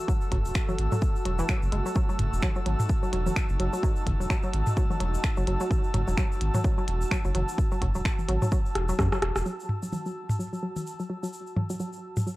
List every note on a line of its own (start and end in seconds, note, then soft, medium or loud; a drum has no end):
0.00 9.47 A3 medium
0.00 12.36 F#4 medium
0.00 1.98 A4 medium
0.00 12.36 A5 medium
0.00 12.36 E6 medium
0.08 0.15 F#3 medium
0.08 kick loud
0.08 shaker medium
0.21 shaker soft
0.32 0.40 F#1 loud
0.32 0.36 F#3 medium
0.32 kick medium
0.32 closed hi-hat medium
0.32 mid tom medium
0.45 0.51 E1 loud
0.45 shaker medium
0.54 finger snap medium
0.54 kick loud
0.54 shaker medium
0.69 0.73 F#3 medium
0.69 high tom soft
0.69 shaker soft
0.78 0.87 G#1 medium
0.78 closed hi-hat loud
0.92 0.95 F#3 medium
0.92 mid tom medium
0.92 shaker medium
1.02 kick loud
1.02 shaker medium
1.16 shaker soft
1.25 1.41 E1 medium
1.25 1.30 F#3 medium
1.25 closed hi-hat medium
1.39 1.44 E3 loud
1.39 shaker medium
1.49 1.53 F#3 medium
1.49 finger snap medium
1.49 kick loud
1.49 high tom soft
1.49 shaker medium
1.62 1.69 F#1 loud
1.62 shaker soft
1.72 1.81 F#1 loud
1.72 1.77 G#3 medium
1.72 closed hi-hat medium
1.86 1.88 F#3 medium
1.86 shaker medium
1.95 1.98 F#3 medium
1.95 9.48 D#4 medium
1.95 kick loud
1.95 shaker medium
2.09 2.12 F#3 medium
2.09 shaker soft
2.19 2.28 F#1 loud
2.19 closed hi-hat medium
2.19 mid tom medium
2.33 2.39 E1 loud
2.33 shaker medium
2.42 2.49 F#3 medium
2.42 finger snap medium
2.42 kick loud
2.42 high tom soft
2.42 shaker medium
2.56 2.58 F#3 medium
2.56 shaker soft
2.66 2.75 G#1 medium
2.66 2.70 F#3 medium
2.66 closed hi-hat medium
2.80 mid tom medium
2.80 shaker medium
2.89 kick loud
2.89 shaker medium
3.03 3.08 F#3 medium
3.03 shaker soft
3.13 3.29 E1 medium
3.13 3.15 F#3 medium
3.13 closed hi-hat medium
3.26 3.30 F#3 medium
3.26 high tom soft
3.26 shaker medium
3.36 finger snap medium
3.36 kick loud
3.36 shaker medium
3.49 3.56 F#1 loud
3.49 shaker soft
3.60 3.68 F#1 loud
3.60 3.66 F#3 medium
3.60 closed hi-hat medium
3.73 3.75 F#3 medium
3.73 shaker medium
3.83 3.88 F#3 medium
3.83 kick loud
3.83 shaker medium
3.96 shaker soft
4.07 4.15 F#1 loud
4.07 kick medium
4.07 closed hi-hat medium
4.07 mid tom medium
4.07 high tom soft
4.20 4.26 E1 loud
4.20 4.25 F#3 medium
4.20 shaker medium
4.30 4.33 F#3 medium
4.30 finger snap medium
4.30 kick loud
4.30 shaker medium
4.43 4.47 F#3 medium
4.43 shaker soft
4.54 4.62 G#1 medium
4.54 closed hi-hat medium
4.67 mid tom medium
4.67 shaker medium
4.77 4.83 F#3 medium
4.77 kick loud
4.77 shaker medium
4.90 4.92 F#3 medium
4.90 high tom soft
4.90 shaker soft
5.00 5.17 E1 medium
5.00 5.05 F#3 medium
5.00 closed hi-hat medium
5.14 shaker medium
5.24 finger snap medium
5.24 kick loud
5.24 shaker medium
5.37 5.44 F#1 loud
5.37 5.42 F#3 medium
5.37 shaker soft
5.47 5.56 F#1 loud
5.47 5.50 F#3 medium
5.47 closed hi-hat medium
5.60 5.64 F#3 medium
5.60 shaker medium
5.71 kick loud
5.71 high tom soft
5.71 shaker medium
5.84 shaker soft
5.94 6.03 F#1 loud
5.94 6.01 F#3 medium
5.94 closed hi-hat medium
5.94 mid tom medium
6.08 6.14 E1 loud
6.08 6.10 F#3 medium
6.08 shaker medium
6.17 6.22 F#3 medium
6.17 finger snap medium
6.17 kick loud
6.17 shaker medium
6.32 shaker soft
6.41 6.50 G#1 medium
6.41 closed hi-hat medium
6.54 6.59 F#3 medium
6.54 mid tom medium
6.54 high tom soft
6.54 shaker medium
6.64 6.67 F#3 medium
6.64 kick loud
6.64 shaker medium
6.78 6.81 F#3 medium
6.78 shaker soft
6.88 7.04 E1 medium
6.88 closed hi-hat medium
7.01 shaker medium
7.11 7.18 F#3 medium
7.11 finger snap medium
7.11 kick loud
7.11 shaker medium
7.25 7.31 F#1 loud
7.25 7.27 F#3 medium
7.25 shaker soft
7.35 7.43 F#1 loud
7.35 7.39 F#3 medium
7.35 closed hi-hat medium
7.35 high tom soft
7.48 shaker medium
7.58 kick loud
7.58 shaker medium
7.71 7.77 F#3 medium
7.71 shaker soft
7.82 7.90 F#1 loud
7.82 7.84 F#3 medium
7.82 kick medium
7.82 closed hi-hat medium
7.82 mid tom medium
7.95 8.01 E1 loud
7.95 7.98 F#3 medium
7.95 shaker medium
8.05 finger snap medium
8.05 kick loud
8.05 shaker medium
8.19 high tom soft
8.19 shaker soft
8.28 8.37 G#1 medium
8.28 8.35 F#3 medium
8.28 closed hi-hat medium
8.42 8.44 F#3 medium
8.42 mid tom medium
8.42 shaker medium
8.52 8.56 F#3 medium
8.52 kick loud
8.52 shaker medium
8.66 shaker soft
8.75 8.91 E1 medium
8.75 cross-stick medium
8.75 closed hi-hat medium
8.89 8.94 F#3 medium
8.89 shaker medium
8.99 9.07 F#2 medium
8.99 9.01 F#3 medium
8.99 kick loud
8.99 cross-stick medium
8.99 high tom soft
8.99 shaker medium
9.12 9.16 F#3 medium
9.12 cross-stick medium
9.12 shaker soft
9.22 9.31 E1 medium
9.22 cross-stick loud
9.22 closed hi-hat medium
9.36 9.42 E1 medium
9.36 cross-stick medium
9.36 shaker medium
9.46 9.50 F#3 medium
9.46 shaker medium
9.60 shaker soft
9.69 mid tom medium
9.83 9.87 F#3 medium
9.83 shaker medium
9.92 9.95 F#3 medium
9.92 high tom soft
9.92 shaker medium
10.06 10.09 F#3 medium
10.06 shaker soft
10.29 mid tom medium
10.29 shaker medium
10.39 10.46 F#3 medium
10.39 shaker medium
10.53 10.55 F#3 medium
10.53 shaker soft
10.63 10.67 F#3 medium
10.76 high tom soft
10.76 shaker medium
10.87 shaker medium
11.00 11.05 F#3 medium
11.00 shaker soft
11.10 11.12 F#3 medium
11.23 11.26 F#3 medium
11.23 shaker medium
11.33 shaker medium
11.47 shaker soft
11.56 11.63 F#3 medium
11.56 mid tom medium
11.56 high tom soft
11.70 11.72 F#3 medium
11.70 shaker medium
11.80 11.84 F#3 medium
11.80 shaker medium
11.93 shaker soft
12.17 12.22 F#3 medium
12.17 mid tom medium
12.17 shaker medium
12.27 12.29 F#3 medium
12.27 shaker medium